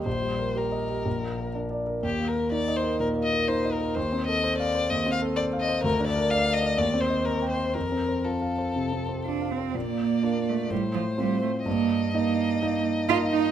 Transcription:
<<
  \new Staff \with { instrumentName = "Violin" } { \time 4/4 \key ees \major \tempo 4 = 125 c''4 bes'2 r4 | g'8 bes'8 d''8 c''8 bes'8 ees''8 c''8 bes'8 | \tuplet 3/2 { c''4 ees''8~ ees''8 d''4 } ees''8 f''8 d''8 ees''8 | \key bes \major bes'8 d''8 f''8 ees''8 d''8 c''8 bes'8 c''8 |
bes'4 a'2~ a'8 r8 | d''2 c''2 | ees''1 | }
  \new Staff \with { instrumentName = "Grand piano" } { \time 4/4 \key ees \major \tuplet 3/2 { bes,,8 g8 bes'8 g'8 ees''8 g'8 bes,,8 bes8 bes'8 d'8 d''8 bes'8 } | \tuplet 3/2 { ees,8 bes8 bes'8 ees'8 ees''8 bes'8 bes,8 bes8 bes'8 ees'8 ees''8 bes'8 } | \tuplet 3/2 { ees,8 c'8 a'8 c''8 f''8 c''8 ees,8 c'8 a'8 c''8 f''8 c''8 } | \key bes \major \tuplet 3/2 { d,8 d'8 bes'8 d''8 f''8 d''8 ees,8 c'8 ees''8 c''8 g''8 c''8 } |
\tuplet 3/2 { f,8 c'8 c''8 f'8 f''8 c''8 c8 c'8 c''8 f'8 f''8 c''8 } | bes,4 <d' f' bes'>4 a,4 <c' f' c''>4 | g,4 <bes ees' ees''>4 <bes ees' ees''>4 <bes ees' ees''>4 | }
  \new Staff \with { instrumentName = "Cello" } { \time 4/4 \key ees \major r1 | r1 | r1 | \key bes \major r1 |
r2. d'8 c'8 | bes4. a8 g8 f8 g8 a8 | bes4 bes4. r8 f'8 ees'8 | }
>>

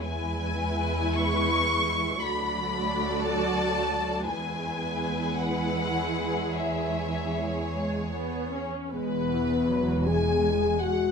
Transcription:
<<
  \new Staff \with { instrumentName = "Violin section" } { \time 6/8 \key e \mixolydian \tempo 4. = 54 gis''4. cis'''4. | b''4. a''4. | gis''4. fis''4. | e''4. r4. |
r2. | }
  \new Staff \with { instrumentName = "Violin section" } { \time 6/8 \key e \mixolydian << { b'2. | d''2. | b'2. | cis''2~ cis''8 r8 |
b'4. gis''4 fis''8 | } \\ { e'2. | a'2. | gis'2.~ | gis'2~ gis'8 r8 |
r2. | } >> }
  \new Staff \with { instrumentName = "French horn section" } { \time 6/8 \key e \mixolydian r2. | r2. | r2. | r2. |
b4. gis'4 fis'8 | }
  \new Staff \with { instrumentName = "Viola section" } { \clef bass \time 6/8 \key e \mixolydian <gis e'>2. | <fis fis'>2. | <gis e'>2.~ | <gis e'>4. gis8 b8 cis'8 |
gis8 e8 fis8 gis4. | }
  \new Staff \with { instrumentName = "Cello section" } { \clef bass \time 6/8 \key e \mixolydian e,2. | d,2. | e,2.~ | e,2~ e,8 r8 |
e,2. | }
  \new Staff \with { instrumentName = "Double bass section" } { \clef bass \time 6/8 \key e \mixolydian r2. | r2. | r2. | r2. |
e,,2. | }
>>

